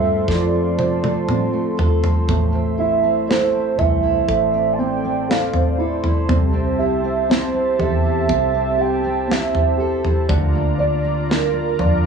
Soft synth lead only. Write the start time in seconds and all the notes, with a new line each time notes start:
Already playing: E5
0.28 D5
2.79 E5
3.29 C5
3.78 E5
4.73 A5
4.79 G5
5.30 F5
6.78 E5
7.30 C5
7.80 E5
8.81 G5
9.31 E5
10.80 D5
11.29 A#4
11.80 D5